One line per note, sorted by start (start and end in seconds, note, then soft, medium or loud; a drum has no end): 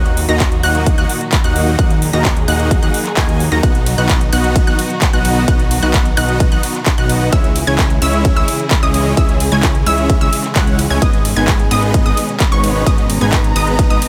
0.00 0.26 D#2 loud
0.00 3.60 A#2 medium
0.00 3.59 D#3 medium
0.00 7.29 F#3 medium
0.00 7.29 D#4 medium
0.00 1.77 F#4 medium
0.06 closed hi-hat soft
0.17 open hi-hat loud
0.29 0.61 D#2 loud
0.29 0.52 A#3 medium
0.29 0.52 D#4 medium
0.29 0.52 F#4 medium
0.29 0.51 D#5 medium
0.29 0.52 A#5 loud
0.29 0.51 A#6 loud
0.29 closed hi-hat soft
0.40 kick loud
0.40 clap loud
0.40 closed hi-hat medium
0.52 closed hi-hat soft
0.63 0.96 D#2 loud
0.63 0.95 A#3 loud
0.63 0.95 D#4 medium
0.63 0.95 F#4 medium
0.63 0.95 D#5 medium
0.63 0.95 F#5 loud
0.63 0.95 F#6 loud
0.63 open hi-hat medium
0.75 closed hi-hat soft
0.86 kick loud
0.86 closed hi-hat medium
0.98 1.05 D#2 loud
0.98 1.07 A#3 medium
0.98 1.07 D#4 medium
0.98 1.07 F#4 medium
0.98 1.07 D#5 medium
0.98 1.07 F#5 loud
0.98 1.07 F#6 loud
0.98 closed hi-hat soft
1.09 open hi-hat loud
1.21 closed hi-hat soft
1.32 kick loud
1.32 clap loud
1.32 closed hi-hat loud
1.44 1.76 D#2 loud
1.44 1.76 A#3 medium
1.44 1.76 D#4 medium
1.44 1.76 F#4 medium
1.44 1.76 D#5 medium
1.44 1.76 F#5 loud
1.44 1.76 F#6 loud
1.44 closed hi-hat soft
1.56 open hi-hat medium
1.79 2.11 D#2 medium
1.79 1.93 A#3 medium
1.79 1.93 D#4 medium
1.79 3.62 G#4 medium
1.79 1.93 D#5 medium
1.79 1.93 F#6 medium
1.79 kick loud
1.79 closed hi-hat medium
1.90 closed hi-hat soft
2.02 open hi-hat loud
2.13 2.46 D#2 loud
2.13 2.36 A#3 medium
2.13 2.36 D#4 medium
2.13 2.36 F#4 medium
2.13 2.36 D#5 medium
2.13 2.36 A#5 loud
2.13 2.36 A#6 medium
2.13 closed hi-hat soft
2.25 kick loud
2.25 clap loud
2.25 closed hi-hat medium
2.37 closed hi-hat soft
2.48 2.80 D#2 loud
2.48 2.80 A#3 loud
2.48 2.80 D#4 medium
2.48 2.80 F#4 medium
2.48 2.80 D#5 medium
2.48 2.80 F#5 loud
2.48 2.80 F#6 loud
2.48 open hi-hat medium
2.60 closed hi-hat soft
2.71 kick loud
2.71 closed hi-hat loud
2.82 2.89 D#2 loud
2.82 2.92 A#3 medium
2.82 2.92 D#4 medium
2.82 2.92 F#4 medium
2.82 2.92 D#5 medium
2.82 2.92 F#5 loud
2.82 2.92 F#6 loud
2.82 closed hi-hat soft
2.94 open hi-hat loud
3.05 clap soft
3.05 closed hi-hat soft
3.17 3.49 D#2 loud
3.17 3.40 A#3 medium
3.17 3.40 D#4 medium
3.17 3.40 F#4 medium
3.17 3.40 D#5 medium
3.17 3.40 G#5 loud
3.17 3.40 G#6 loud
3.17 kick loud
3.17 clap loud
3.17 closed hi-hat loud
3.29 closed hi-hat soft
3.40 open hi-hat medium
3.52 3.61 D#2 loud
3.52 3.61 A#3 medium
3.52 3.61 D#4 medium
3.52 3.61 F#4 medium
3.52 3.61 D#5 medium
3.52 3.61 A#5 medium
3.52 3.61 A#6 medium
3.52 closed hi-hat soft
3.63 3.96 B1 medium
3.63 7.29 B2 medium
3.63 7.29 D#3 medium
3.63 3.78 B3 medium
3.63 3.78 D#4 medium
3.63 7.29 F#4 medium
3.63 3.78 F#4 medium
3.63 3.78 D#5 medium
3.63 3.78 F#5 medium
3.63 3.78 F#6 medium
3.63 kick loud
3.63 closed hi-hat loud
3.63 ride medium
3.75 closed hi-hat soft
3.86 open hi-hat loud
3.86 ride medium
3.98 4.30 B1 loud
3.98 4.21 B3 medium
3.98 4.21 D#4 medium
3.98 4.21 F#4 medium
3.98 4.21 D#5 medium
3.98 4.21 F#5 loud
3.98 4.21 F#6 medium
3.98 closed hi-hat soft
4.09 kick loud
4.09 clap loud
4.09 closed hi-hat loud
4.09 ride medium
4.21 closed hi-hat soft
4.33 4.65 B1 loud
4.33 4.64 B3 loud
4.33 4.64 D#4 medium
4.33 4.64 F#4 medium
4.33 4.64 D#5 medium
4.33 4.64 F#5 loud
4.33 4.65 F#6 loud
4.33 open hi-hat medium
4.33 ride medium
4.44 closed hi-hat soft
4.56 kick loud
4.56 closed hi-hat loud
4.56 ride medium
4.67 4.74 B1 loud
4.67 4.76 B3 medium
4.67 4.76 D#4 medium
4.67 4.76 F#4 medium
4.67 4.76 D#5 medium
4.67 4.76 F#5 medium
4.67 4.76 F#6 loud
4.67 closed hi-hat soft
4.79 open hi-hat loud
4.79 ride medium
4.90 closed hi-hat soft
5.02 kick loud
5.02 clap loud
5.02 closed hi-hat loud
5.02 ride medium
5.13 5.46 B1 loud
5.13 5.45 B3 medium
5.13 5.45 D#4 medium
5.13 5.45 F#4 medium
5.13 5.45 D#5 medium
5.13 5.45 F#5 loud
5.13 5.45 F#6 loud
5.13 closed hi-hat soft
5.25 open hi-hat medium
5.25 ride medium
5.48 5.80 B1 medium
5.48 5.62 B3 medium
5.48 5.62 F#6 medium
5.48 kick loud
5.48 closed hi-hat medium
5.48 ride medium
5.59 closed hi-hat soft
5.71 open hi-hat loud
5.71 ride medium
5.82 6.15 B1 loud
5.82 6.05 B3 medium
5.82 6.05 D#4 medium
5.82 6.05 F#4 medium
5.82 6.05 D#5 medium
5.82 6.05 F#5 loud
5.82 6.05 F#6 loud
5.82 closed hi-hat soft
5.94 kick loud
5.94 clap loud
5.94 closed hi-hat medium
5.94 ride medium
6.06 closed hi-hat soft
6.17 6.49 B1 loud
6.17 6.49 B3 loud
6.17 6.49 D#4 loud
6.17 6.49 F#4 medium
6.17 6.49 D#5 loud
6.17 6.49 F#5 loud
6.17 6.49 F#6 loud
6.17 open hi-hat loud
6.17 ride medium
6.29 closed hi-hat soft
6.40 kick loud
6.40 closed hi-hat medium
6.40 ride medium
6.52 6.59 B1 loud
6.52 6.61 B3 medium
6.52 6.61 D#4 medium
6.52 6.61 F#4 medium
6.52 6.61 D#5 medium
6.52 6.61 F#5 loud
6.52 6.61 F#6 loud
6.52 closed hi-hat soft
6.63 open hi-hat loud
6.63 ride medium
6.75 clap soft
6.75 closed hi-hat soft
6.86 kick loud
6.86 clap loud
6.86 closed hi-hat loud
6.86 ride medium
6.98 7.30 B1 loud
6.98 7.30 B3 medium
6.98 7.30 D#4 medium
6.98 7.30 F#4 medium
6.98 7.30 D#5 medium
6.98 7.30 F#5 loud
6.98 7.30 F#6 loud
6.98 closed hi-hat soft
7.09 open hi-hat loud
7.09 ride medium
7.32 7.65 C#2 medium
7.32 10.98 C#3 medium
7.32 10.98 E3 medium
7.32 7.47 G#3 medium
7.32 14.08 G#3 medium
7.32 7.47 C#4 medium
7.32 7.47 E4 medium
7.32 9.15 E4 medium
7.32 10.98 G#4 medium
7.32 7.47 C#5 medium
7.32 7.47 E5 medium
7.32 7.47 E6 medium
7.32 kick loud
7.32 closed hi-hat medium
7.32 ride medium
7.44 closed hi-hat soft
7.56 open hi-hat loud
7.56 ride medium
7.67 8.00 C#2 loud
7.67 7.90 G#3 medium
7.67 7.90 C#4 medium
7.67 7.90 E4 medium
7.67 7.90 C#5 medium
7.67 7.90 G#5 loud
7.67 7.90 G#6 loud
7.67 closed hi-hat soft
7.79 kick loud
7.79 clap loud
7.79 closed hi-hat medium
7.79 ride medium
7.90 closed hi-hat soft
8.02 8.34 C#2 loud
8.02 8.34 G#3 medium
8.02 8.34 C#4 medium
8.02 8.34 E4 medium
8.02 8.34 C#5 medium
8.02 8.34 E5 loud
8.02 8.34 E6 loud
8.02 open hi-hat loud
8.02 ride medium
8.13 closed hi-hat soft
8.25 kick loud
8.25 closed hi-hat medium
8.25 ride medium
8.36 8.43 C#2 loud
8.36 8.46 G#3 medium
8.36 8.46 C#4 medium
8.36 8.46 E4 medium
8.36 8.46 C#5 medium
8.36 8.46 E5 loud
8.36 8.46 E6 loud
8.36 closed hi-hat soft
8.48 open hi-hat loud
8.48 ride medium
8.60 closed hi-hat soft
8.71 kick loud
8.71 clap loud
8.71 closed hi-hat medium
8.71 ride medium
8.82 9.15 C#2 loud
8.82 9.14 G#3 medium
8.82 9.14 C#4 medium
8.82 9.14 E4 medium
8.82 9.14 C#5 medium
8.82 9.14 D#5 loud
8.82 9.15 D#6 loud
8.82 closed hi-hat soft
8.94 open hi-hat loud
8.94 ride medium
9.17 9.49 C#2 loud
9.17 9.31 G#3 medium
9.17 14.08 C#4 medium
9.17 9.31 C#4 medium
9.17 9.31 E4 medium
9.17 9.31 E5 medium
9.17 9.32 E6 medium
9.17 kick loud
9.17 closed hi-hat medium
9.17 ride medium
9.29 closed hi-hat soft
9.40 open hi-hat loud
9.40 ride medium
9.52 9.84 C#2 loud
9.52 9.75 G#3 medium
9.52 9.75 C#4 medium
9.52 9.75 E4 medium
9.52 9.75 C#5 medium
9.52 9.75 G#5 loud
9.52 9.75 G#6 medium
9.52 closed hi-hat soft
9.63 kick loud
9.63 clap loud
9.63 closed hi-hat medium
9.63 ride medium
9.75 closed hi-hat soft
9.86 10.19 C#2 loud
9.86 10.18 G#3 loud
9.86 10.18 C#4 medium
9.86 10.18 E4 medium
9.86 10.18 C#5 medium
9.86 10.18 E5 loud
9.86 10.18 E6 loud
9.86 open hi-hat loud
9.86 ride medium
9.98 closed hi-hat soft
10.10 kick loud
10.10 closed hi-hat medium
10.10 ride medium
10.21 10.28 C#2 loud
10.21 10.30 G#3 medium
10.21 10.30 C#4 medium
10.21 10.30 E4 medium
10.21 10.30 C#5 medium
10.21 10.30 E5 loud
10.21 10.30 E6 loud
10.21 closed hi-hat soft
10.33 open hi-hat loud
10.33 ride medium
10.44 clap soft
10.44 closed hi-hat soft
10.56 10.88 C#2 medium
10.56 10.78 G#3 medium
10.56 10.78 C#4 medium
10.56 10.78 E4 medium
10.56 10.78 C#5 medium
10.56 10.78 F#5 loud
10.56 10.78 F#6 loud
10.56 kick loud
10.56 clap loud
10.56 closed hi-hat medium
10.56 ride medium
10.67 closed hi-hat soft
10.79 open hi-hat loud
10.79 ride medium
10.90 11.00 C#2 loud
10.90 10.99 G#3 medium
10.90 10.99 C#4 medium
10.90 10.99 E4 medium
10.90 10.99 C#5 medium
10.90 10.99 G#5 medium
10.90 10.99 G#6 medium
11.02 11.34 G#1 loud
11.02 14.08 B2 medium
11.02 14.08 D#3 medium
11.02 11.16 G#3 medium
11.02 11.16 B3 medium
11.02 11.16 D#4 medium
11.02 12.85 G#4 medium
11.02 11.16 B4 medium
11.02 11.16 D#5 medium
11.02 11.16 D#6 medium
11.02 kick loud
11.02 closed hi-hat medium
11.02 ride medium
11.13 closed hi-hat soft
11.25 open hi-hat loud
11.25 ride medium
11.36 11.69 G#1 loud
11.36 11.59 G#3 medium
11.36 11.59 B3 medium
11.36 11.59 D#4 medium
11.36 11.59 B4 medium
11.36 11.59 G#5 medium
11.36 11.59 G#6 medium
11.36 closed hi-hat soft
11.48 kick loud
11.48 clap loud
11.48 closed hi-hat medium
11.48 ride medium
11.60 closed hi-hat soft
11.71 12.03 G#1 loud
11.71 12.03 G#3 loud
11.71 12.03 B3 medium
11.71 12.03 D#4 medium
11.71 12.03 B4 medium
11.71 12.03 D#5 loud
11.71 12.03 D#6 loud
11.71 open hi-hat medium
11.71 ride medium
11.83 closed hi-hat soft
11.94 kick loud
11.94 closed hi-hat medium
11.94 ride medium
12.05 12.12 G#1 loud
12.05 12.15 G#3 medium
12.05 12.15 B3 medium
12.05 12.15 D#4 medium
12.05 12.15 B4 medium
12.05 12.15 D#5 loud
12.05 12.15 D#6 loud
12.05 closed hi-hat soft
12.17 open hi-hat loud
12.17 ride medium
12.29 closed hi-hat soft
12.40 kick loud
12.40 clap loud
12.40 closed hi-hat medium
12.40 ride medium
12.52 12.84 G#1 loud
12.52 12.84 G#3 medium
12.52 12.84 B3 medium
12.52 12.84 D#4 medium
12.52 12.84 B4 medium
12.52 12.84 C#5 medium
12.52 12.84 C#6 loud
12.52 closed hi-hat soft
12.64 open hi-hat medium
12.64 ride medium
12.86 13.19 G#1 loud
12.86 13.01 B3 medium
12.86 13.01 D#4 medium
12.86 14.08 A#5 medium
12.86 13.01 D#6 medium
12.86 kick loud
12.86 closed hi-hat medium
12.86 ride medium
12.98 closed hi-hat soft
13.10 open hi-hat loud
13.10 ride medium
13.21 13.53 G#1 loud
13.21 13.44 G#3 medium
13.21 13.44 B3 medium
13.21 13.44 D#4 medium
13.21 13.44 B4 medium
13.21 13.44 G#5 loud
13.21 13.44 G#6 medium
13.21 closed hi-hat soft
13.32 kick loud
13.32 clap loud
13.32 closed hi-hat medium
13.32 ride medium
13.44 closed hi-hat soft
13.56 13.88 G#1 loud
13.56 13.88 G#3 loud
13.56 13.88 B3 medium
13.56 13.88 D#4 medium
13.56 13.88 B4 medium
13.56 13.88 D#5 loud
13.56 13.88 D#6 loud
13.56 open hi-hat medium
13.56 ride medium
13.67 closed hi-hat soft
13.79 kick loud
13.79 closed hi-hat medium
13.79 ride medium
13.90 13.97 G#1 loud
13.90 14.00 G#3 medium
13.90 14.00 B3 medium
13.90 14.00 D#4 medium
13.90 14.00 B4 medium
13.90 14.00 D#5 loud
13.90 14.00 D#6 loud
13.90 closed hi-hat soft
14.02 open hi-hat loud
14.02 ride medium